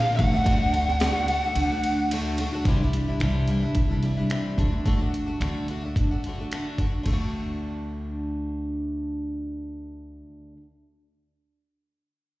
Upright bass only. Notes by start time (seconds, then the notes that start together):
0.19 D2
1.55 D2
2.65 C2
3.20 C2
3.75 C3
4.58 D2
5.40 D2
5.96 D3
7.05 D2